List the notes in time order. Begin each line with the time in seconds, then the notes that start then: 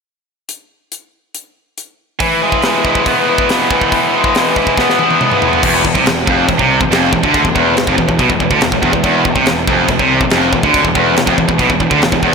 0.49 closed hi-hat
0.92 closed hi-hat
1.35 closed hi-hat
1.78 closed hi-hat
2.20 E3, kick, open hi-hat
2.42 E3 G#3
2.52 kick
2.62 E3 G#3, snare, open hi-hat
2.85 G#3 E4, kick
2.95 kick
3.06 B3, kick, open hi-hat
3.28 E3 E4
3.38 kick
3.49 G#3 B3, snare, open hi-hat
3.71 E3, kick
3.81 kick
3.92 E3, kick, open hi-hat
4.13 E3 G#3
4.24 kick
4.35 E3 G#3, snare, open hi-hat
4.56 G#3 E4, kick
4.67 kick
4.77 B3, kick, snare
4.89 snare
4.98 E3 E4, high tom
5.11 high tom
5.19 G#3 B3, mid tom
5.32 mid tom
5.42 E3, floor tom
5.53 floor tom
5.63 E1 E2, kick, crash, china
5.85 E1 E2, kick
5.95 C2 C3, kick
6.06 E1 E2, snare, china
6.27 F1 F2, kick
6.49 E1 E2, kick, china
6.59 C2 C3, kick
6.80 E1 E2, kick
6.90 F1 F2, snare, china
7.13 E1 E2, kick
7.23 D2 D3, kick
7.34 kick, china
7.45 E1 E2, kick
7.55 E1 E2, kick
7.76 E1 E2, snare, china
7.87 F1 F2, kick
7.98 E1 E2, kick
8.08 E1 E2, kick
8.19 B1 B2, kick, china
8.30 E1 E2, kick
8.40 E1 E2, kick
8.50 D2 D3, kick
8.61 E1 E2, snare, china
8.72 E1 E2, kick
8.82 E1 E2, kick
8.93 E1 E2, kick
9.03 E1 E2, kick, china
9.25 E1 E2, kick
9.36 C2 C3, kick
9.46 E1 E2, snare, china
9.67 F1 F2, kick
9.88 E1 E2, kick, china
9.99 C2 C3, kick
10.20 E1 E2, kick
10.30 F1 F2, snare, china
10.53 E1 E2, kick
10.63 D2 D3, kick
10.74 kick, china
10.84 E1 E2, kick
10.95 E1 E2, kick
11.16 E1 E2, snare, china
11.27 F1 F2, kick
11.38 E1 E2, kick
11.48 E1 E2, kick
11.59 B1 B2, kick, china
11.70 E1 E2, kick
11.80 E1 E2, kick
11.91 D2 D3, kick
12.01 E1 E2, snare, china
12.12 E1 E2, kick
12.23 E1 E2, kick